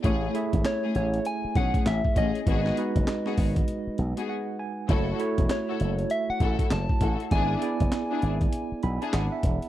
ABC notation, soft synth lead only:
X:1
M:4/4
L:1/16
Q:"Swing 16ths" 1/4=99
K:F#m
V:1 name="Soft synth lead"
z4 c2 c2 g2 f2 e2 ^d2- | ^d12- d2 z2 | z4 c4 e f3 a4 | g12- g2 z2 |]